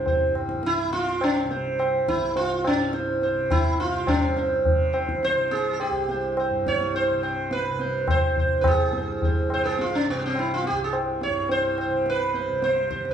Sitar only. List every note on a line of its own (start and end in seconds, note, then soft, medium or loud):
0.00 0.32 C#4 medium
0.08 0.34 C5 soft
0.66 0.92 E4 loud
0.93 1.22 F4 loud
1.24 1.49 C#4 medium
1.51 1.77 C5 soft
1.79 2.06 C5 soft
2.09 2.35 E4 medium
2.36 2.66 F4 loud
2.67 2.93 C#4 medium
2.94 3.20 C5 soft
3.23 3.49 C5 soft
3.51 3.80 E4 medium
3.80 4.09 F4 medium
4.07 4.90 C#4 medium
4.07 4.34 C5 soft
4.37 4.63 C5 soft
4.93 5.20 C5 soft
5.24 5.53 C5 loud
5.51 5.72 G#4 medium
5.73 5.80 G#4 soft
5.81 6.33 G4 medium
6.11 6.36 C5 soft
6.40 6.65 C5 soft
6.68 6.95 C#5 medium
6.96 7.22 C5 medium
7.23 7.49 C5 soft
7.53 8.10 B4 medium
7.81 8.07 C5 soft
8.10 8.38 C5 medium
8.39 8.61 C5 soft
8.61 8.66 B4 medium
8.67 9.54 G#4 medium
8.97 9.22 C5 soft
9.25 9.50 C5 soft
9.54 9.63 C5 medium
9.64 9.80 G#4 medium
9.64 9.66 B4 medium
9.81 9.94 F4 medium
9.95 10.07 C#4 medium
10.10 10.23 B3 medium
10.26 10.38 C4 medium
10.39 10.52 E4 medium
10.54 10.66 F4 medium
10.67 10.80 G4 medium
10.84 10.94 G#4 medium
11.23 11.51 C#5 medium
11.51 11.80 C5 medium
11.81 12.06 C5 soft
12.10 12.63 B4 medium
12.35 12.61 C5 soft
12.64 12.89 C5 medium
12.90 13.10 C5 soft